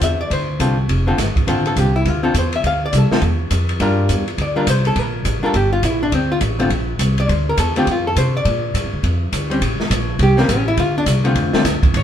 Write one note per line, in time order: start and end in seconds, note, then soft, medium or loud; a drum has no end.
0.00 0.30 E2 medium
0.00 0.16 D3 soft
0.00 0.17 C4 soft
0.00 0.17 F4 medium
0.00 0.20 E5 medium
0.00 kick soft
0.00 hi-hat pedal medium
0.00 ride medium
0.21 0.31 D5 medium
0.30 0.59 D2 medium
0.30 0.60 C5 medium
0.30 kick soft
0.30 ride medium
0.59 0.88 C2 medium
0.59 0.76 D3 medium
0.59 0.77 C4 medium
0.59 0.77 F4 medium
0.59 0.77 A4 medium
0.59 kick soft
0.59 hi-hat pedal medium
0.59 ride medium
0.89 1.17 F1 medium
0.89 kick soft
0.89 ride medium
1.07 1.17 D3 medium
1.07 1.17 C4 medium
1.07 1.17 F4 medium
1.07 1.18 A4 medium
1.18 1.35 G1 medium
1.18 kick soft
1.18 snare soft
1.18 hi-hat pedal medium
1.18 ride medium
1.36 muted upright bass stroke soft
1.36 kick medium
1.36 ride soft
1.47 1.76 A1 medium
1.47 1.91 D3 medium
1.47 1.91 C4 medium
1.47 1.91 F4 medium
1.47 1.66 A4 medium
1.47 kick soft
1.47 ride medium
1.66 1.77 A4 medium
1.66 ride soft
1.76 2.05 C2 medium
1.76 1.95 G4 medium
1.76 kick soft
1.76 hi-hat pedal medium
1.76 ride medium
1.96 2.08 E4 medium
2.05 2.33 D2 medium
2.05 2.22 F4 medium
2.05 kick soft
2.05 ride medium
2.23 2.33 D3 medium
2.23 2.33 C4 medium
2.23 2.33 F4 medium
2.23 2.34 A4 medium
2.34 2.63 E2 medium
2.34 kick soft
2.34 hi-hat pedal medium
2.34 ride medium
2.39 2.54 C5 medium
2.53 2.65 E5 medium
2.53 ride medium
2.63 2.92 D2 medium
2.63 2.83 F5 medium
2.63 kick soft
2.63 ride medium
2.86 2.94 D5 medium
2.93 3.10 C2 medium
2.93 kick soft
2.93 hi-hat pedal medium
2.93 ride medium
2.98 3.11 A4 medium
3.11 3.21 D3 medium
3.11 3.21 C4 medium
3.11 3.21 F4 medium
3.11 3.22 A4 medium
3.11 muted upright bass stroke soft
3.11 snare medium
3.22 3.50 E2 medium
3.22 kick soft
3.22 ride medium
3.51 3.79 F2 medium
3.51 kick soft
3.51 hi-hat pedal medium
3.51 ride medium
3.69 ride soft
3.80 4.08 G2 medium
3.80 4.24 G3 medium
3.80 4.24 D4 medium
3.80 4.24 F4 medium
3.80 4.24 A#4 medium
3.80 kick soft
3.80 ride medium
4.09 4.37 E2 medium
4.09 kick soft
4.09 hi-hat pedal medium
4.09 ride medium
4.28 ride soft
4.38 4.66 D2 medium
4.38 4.56 D5 medium
4.38 kick soft
4.38 ride medium
4.56 4.66 G3 medium
4.56 4.66 D4 medium
4.56 4.66 F4 medium
4.56 4.66 A#4 medium
4.67 4.95 C2 medium
4.67 4.86 C5 medium
4.67 kick soft
4.67 hi-hat pedal medium
4.67 ride medium
4.85 4.99 A4 medium
4.85 ride soft
4.96 5.24 A#1 medium
4.96 5.43 A#4 loud
4.96 kick soft
4.96 ride medium
5.25 5.42 A1 medium
5.25 kick soft
5.25 hi-hat pedal medium
5.25 ride medium
5.42 5.53 G3 medium
5.42 5.53 D4 medium
5.42 5.53 F4 medium
5.42 5.55 A4 medium
5.42 5.53 A#4 medium
5.42 muted upright bass stroke soft
5.54 5.82 G1 medium
5.54 5.72 G4 medium
5.54 kick soft
5.54 ride medium
5.73 5.83 F4 medium
5.82 6.11 A#1 medium
5.82 6.02 E4 medium
5.82 kick soft
5.82 hi-hat pedal medium
5.82 ride medium
6.03 6.13 D4 medium
6.12 6.40 D2 medium
6.12 6.31 C4 medium
6.12 kick soft
6.12 ride medium
6.32 6.38 F4 medium
6.41 6.69 A1 medium
6.41 kick soft
6.41 hi-hat pedal medium
6.41 ride medium
6.59 6.69 D3 medium
6.59 6.69 A3 medium
6.59 6.69 C4 medium
6.59 6.70 F4 medium
6.59 ride soft
6.70 6.98 A#1 medium
6.70 kick soft
6.70 ride medium
6.99 7.27 C2 medium
6.99 kick soft
6.99 hi-hat pedal medium
6.99 ride medium
7.18 7.30 D5 medium
7.18 ride soft
7.29 7.57 D2 medium
7.29 7.47 C5 medium
7.29 kick soft
7.29 ride medium
7.49 7.59 A#4 medium
7.57 7.86 E2 medium
7.57 7.76 A4 medium
7.57 kick soft
7.57 hi-hat pedal medium
7.57 ride medium
7.76 7.86 D3 medium
7.76 7.86 A3 medium
7.76 7.86 C4 medium
7.76 7.87 F4 medium
7.76 7.87 G4 medium
7.76 ride soft
7.87 8.15 F2 medium
7.87 kick soft
7.87 ride medium
7.91 8.07 F4 medium
8.07 8.17 A4 medium
8.16 8.44 C3 medium
8.16 8.35 C5 medium
8.16 kick soft
8.16 hi-hat pedal medium
8.16 ride medium
8.37 9.00 D5 medium
8.45 8.73 A#2 medium
8.45 kick soft
8.45 ride medium
8.74 8.85 A2 medium
8.74 kick soft
8.74 hi-hat pedal medium
8.74 ride medium
8.83 8.92 F2 medium
8.93 9.02 D2 medium
9.03 9.31 F2 medium
9.03 kick soft
9.03 ride medium
9.32 9.61 D2 medium
9.32 kick soft
9.32 hi-hat pedal medium
9.32 ride medium
9.50 9.60 G3 medium
9.50 9.61 C4 medium
9.50 9.61 C#4 medium
9.50 ride soft
9.61 9.78 A1 medium
9.61 kick soft
9.61 ride medium
9.79 muted upright bass stroke soft
9.79 snare soft
9.90 10.18 A#1 loud
9.90 kick soft
9.90 hi-hat pedal medium
9.90 ride medium
10.19 10.47 C2 medium
10.19 10.39 G4 medium
10.19 kick soft
10.19 ride medium
10.37 10.47 G3 medium
10.37 10.49 A#3 medium
10.37 10.47 C4 medium
10.37 10.48 C#4 medium
10.37 snare soft
10.48 10.76 A1 medium
10.48 10.67 C#4 medium
10.48 kick soft
10.48 hi-hat pedal medium
10.48 ride medium
10.68 10.78 E4 loud
10.77 11.05 D2 medium
10.77 10.96 F4 loud
10.77 kick soft
10.77 ride medium
10.98 11.04 D4 loud
11.06 11.34 C2 medium
11.06 kick soft
11.06 hi-hat pedal medium
11.06 ride medium
11.24 11.52 D3 medium
11.24 11.52 A3 medium
11.24 11.52 C4 medium
11.24 11.52 F4 medium
11.24 ride soft
11.35 11.52 F2 medium
11.35 kick soft
11.35 ride medium
11.53 11.63 D3 medium
11.53 11.64 A3 medium
11.53 11.64 C4 medium
11.53 11.64 F4 medium
11.53 muted upright bass stroke soft
11.53 snare medium
11.64 11.81 D2 medium
11.64 kick soft
11.64 snare soft
11.64 hi-hat pedal medium
11.64 ride medium
11.83 muted upright bass stroke soft
11.83 kick medium
11.83 ride soft
11.94 12.03 A2 medium
11.94 12.03 C#5 medium
11.94 kick soft
11.94 ride medium